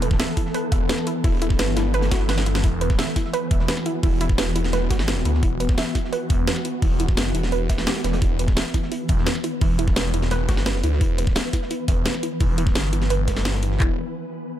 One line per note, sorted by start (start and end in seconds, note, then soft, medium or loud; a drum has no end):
0.00 0.18 E1 loud
0.00 13.76 E3 medium
0.00 13.76 B3 medium
0.00 2.61 A4 medium
0.00 0.12 B4 medium
0.00 closed hi-hat medium
0.11 kick loud
0.11 snare soft
0.20 0.30 E5 loud
0.20 snare loud
0.20 closed hi-hat medium
0.37 0.44 E4 medium
0.37 kick medium
0.37 closed hi-hat medium
0.46 snare soft
0.54 0.65 B4 loud
0.54 closed hi-hat medium
0.72 0.88 E1 medium
0.72 0.79 E5 medium
0.72 kick medium
0.72 closed hi-hat medium
0.89 0.96 B4 medium
0.89 snare loud
0.89 closed hi-hat medium
0.98 snare soft
1.07 1.14 E4 medium
1.07 closed hi-hat medium
1.24 1.58 E1 loud
1.24 1.28 E4 loud
1.24 kick loud
1.24 closed hi-hat medium
1.24 open hi-hat medium
1.42 1.46 E4 loud
1.42 closed hi-hat medium
1.42 closed hi-hat loud
1.50 kick loud
1.50 snare soft
1.59 2.62 G1 loud
1.59 1.66 B4 medium
1.59 snare loud
1.59 closed hi-hat loud
1.59 closed hi-hat medium
1.76 1.83 E4 medium
1.76 snare loud
1.76 snare soft
1.76 closed hi-hat medium
1.94 2.04 B4 loud
1.94 closed hi-hat medium
1.94 swell medium
2.02 snare loud
2.02 closed hi-hat medium
2.11 2.18 F#4 loud
2.11 kick medium
2.11 snare medium
2.11 snare loud
2.11 closed hi-hat loud
2.11 closed hi-hat medium
2.29 2.36 B4 medium
2.29 snare medium
2.29 closed hi-hat medium
2.38 snare medium
2.38 snare loud
2.38 closed hi-hat medium
2.46 2.50 E4 medium
2.46 closed hi-hat medium
2.55 snare medium
2.55 closed hi-hat medium
2.63 2.97 E1 loud
2.63 2.68 E4 medium
2.63 8.20 F#4 loud
2.63 kick loud
2.63 closed hi-hat medium
2.81 2.92 B4 medium
2.81 closed hi-hat loud
2.81 closed hi-hat medium
2.90 kick loud
2.90 snare soft
2.98 3.09 E5 loud
2.98 snare loud
2.98 closed hi-hat medium
3.16 3.23 E4 medium
3.16 kick medium
3.16 snare soft
3.16 closed hi-hat medium
3.25 snare soft
3.33 3.44 B4 loud
3.33 closed hi-hat medium
3.51 3.67 E1 loud
3.51 3.58 E5 medium
3.51 kick loud
3.51 closed hi-hat loud
3.51 closed hi-hat medium
3.59 snare soft
3.68 3.75 B4 medium
3.68 snare loud
3.68 closed hi-hat medium
3.77 snare soft
3.85 3.93 E4 medium
3.85 closed hi-hat medium
4.03 4.37 E1 loud
4.03 4.07 E4 loud
4.03 kick loud
4.03 closed hi-hat medium
4.03 open hi-hat medium
4.21 4.25 E4 loud
4.21 closed hi-hat loud
4.21 closed hi-hat medium
4.29 kick loud
4.29 snare soft
4.38 4.89 E1 medium
4.38 4.45 B4 medium
4.38 snare loud
4.38 closed hi-hat medium
4.56 4.62 E4 medium
4.56 closed hi-hat loud
4.56 closed hi-hat medium
4.64 snare soft
4.73 4.83 B4 loud
4.73 snare loud
4.73 closed hi-hat medium
4.91 5.24 G1 loud
4.91 4.97 F#4 loud
4.91 kick medium
4.91 snare loud
4.91 closed hi-hat loud
4.91 closed hi-hat medium
4.99 snare soft
4.99 snare medium
5.08 5.15 B4 medium
5.08 snare loud
5.08 closed hi-hat medium
5.18 snare soft
5.25 5.41 D2 medium
5.25 5.29 E4 medium
5.25 closed hi-hat medium
5.34 snare soft
5.43 5.76 E1 loud
5.43 5.47 E4 medium
5.43 kick loud
5.43 closed hi-hat medium
5.60 5.71 B4 medium
5.60 closed hi-hat medium
5.69 kick loud
5.69 snare soft
5.78 5.88 E5 loud
5.78 snare loud
5.78 closed hi-hat medium
5.95 6.02 E4 medium
5.95 kick medium
5.95 snare soft
5.95 closed hi-hat medium
6.05 snare soft
6.13 6.23 B4 loud
6.13 closed hi-hat medium
6.30 6.46 E1 loud
6.30 6.37 E5 medium
6.30 kick loud
6.30 closed hi-hat medium
6.47 6.54 B4 medium
6.47 snare loud
6.47 closed hi-hat medium
6.56 snare medium
6.65 6.72 E4 medium
6.65 closed hi-hat medium
6.82 7.16 E1 loud
6.82 6.87 E4 loud
6.82 kick loud
6.82 closed hi-hat medium
6.82 open hi-hat medium
6.99 7.04 E4 loud
6.99 closed hi-hat medium
7.08 kick loud
7.08 snare soft
7.17 7.33 F#1 loud
7.17 7.24 B4 medium
7.17 snare loud
7.17 closed hi-hat medium
7.35 7.86 E1 loud
7.35 7.42 E4 medium
7.35 closed hi-hat medium
7.43 snare soft
7.52 7.62 B4 loud
7.52 closed hi-hat medium
7.70 7.74 E5 medium
7.70 kick medium
7.70 snare soft
7.70 closed hi-hat medium
7.78 snare soft
7.78 snare medium
7.87 7.91 G4 loud
7.87 snare loud
7.87 snare medium
7.87 closed hi-hat medium
7.95 snare loud
7.95 closed hi-hat medium
8.04 8.21 E1 medium
8.04 8.11 B4 medium
8.04 snare medium
8.04 closed hi-hat medium
8.13 snare loud
8.13 closed hi-hat medium
8.22 8.55 E1 loud
8.22 8.26 E4 medium
8.22 13.78 B4 loud
8.22 kick loud
8.22 closed hi-hat medium
8.39 8.50 B4 medium
8.39 closed hi-hat medium
8.48 kick loud
8.48 snare soft
8.56 8.67 E5 loud
8.56 snare loud
8.56 closed hi-hat medium
8.74 8.81 E4 medium
8.74 kick medium
8.74 snare soft
8.74 closed hi-hat medium
8.82 snare soft
8.92 8.96 E4 medium
8.92 closed hi-hat medium
9.08 9.25 E1 loud
9.08 9.16 E5 medium
9.08 kick loud
9.08 closed hi-hat medium
9.18 snare soft
9.26 9.33 B4 medium
9.26 snare loud
9.26 closed hi-hat medium
9.35 snare soft
9.44 9.51 E4 medium
9.44 closed hi-hat medium
9.61 9.95 E1 loud
9.61 9.66 E4 loud
9.61 kick loud
9.61 closed hi-hat medium
9.61 open hi-hat medium
9.79 9.83 E4 loud
9.79 closed hi-hat medium
9.88 kick loud
9.88 snare soft
9.96 10.47 E1 loud
9.96 10.03 B4 medium
9.96 snare loud
9.96 closed hi-hat medium
10.14 10.21 E4 medium
10.14 closed hi-hat medium
10.21 snare soft
10.31 10.41 B4 loud
10.31 snare loud
10.31 closed hi-hat medium
10.48 10.82 G1 loud
10.48 10.56 F#4 loud
10.48 kick medium
10.48 snare loud
10.48 closed hi-hat medium
10.57 snare soft
10.57 snare medium
10.57 snare soft
10.66 10.73 B4 medium
10.66 snare loud
10.66 closed hi-hat medium
10.75 snare medium
10.84 11.00 D2 medium
10.84 10.88 E4 medium
10.84 closed hi-hat medium
10.92 snare soft
11.01 11.34 E1 loud
11.01 11.05 E4 medium
11.01 kick loud
11.01 closed hi-hat medium
11.18 11.29 B4 medium
11.18 closed hi-hat medium
11.18 closed hi-hat loud
11.27 kick loud
11.27 snare soft
11.35 11.46 E5 loud
11.35 snare loud
11.35 closed hi-hat medium
11.53 11.60 E4 medium
11.53 kick medium
11.53 snare soft
11.53 closed hi-hat medium
11.62 snare soft
11.70 11.75 E4 medium
11.70 closed hi-hat medium
11.88 12.04 E1 loud
11.88 11.95 E5 medium
11.88 kick loud
11.88 closed hi-hat loud
11.88 closed hi-hat medium
12.05 12.12 B4 medium
12.05 snare loud
12.05 closed hi-hat medium
12.14 snare soft
12.23 12.30 E4 medium
12.23 closed hi-hat medium
12.40 12.74 E1 medium
12.40 12.45 E4 loud
12.40 kick loud
12.40 closed hi-hat medium
12.40 open hi-hat medium
12.58 12.62 E4 loud
12.58 closed hi-hat loud
12.58 closed hi-hat medium
12.67 kick loud
12.67 snare soft
12.75 13.79 G1 loud
12.75 12.82 B4 medium
12.75 snare loud
12.75 closed hi-hat medium
12.75 closed hi-hat loud
12.93 13.00 E4 medium
12.93 closed hi-hat medium
12.93 closed hi-hat loud
13.02 snare soft
13.10 13.21 B4 loud
13.10 closed hi-hat loud
13.10 closed hi-hat medium
13.28 13.32 B4 medium
13.28 kick medium
13.28 snare loud
13.28 closed hi-hat medium
13.28 closed hi-hat loud
13.36 snare soft
13.36 snare loud
13.36 snare medium
13.36 closed hi-hat medium
13.45 13.55 F#4 medium
13.45 snare loud
13.45 closed hi-hat medium
13.53 snare medium
13.53 closed hi-hat medium
13.63 13.70 E4 medium
13.63 closed hi-hat medium
13.71 snare soft
13.80 13.96 E1 loud
13.80 13.96 E4 medium
13.80 kick loud
13.80 clap medium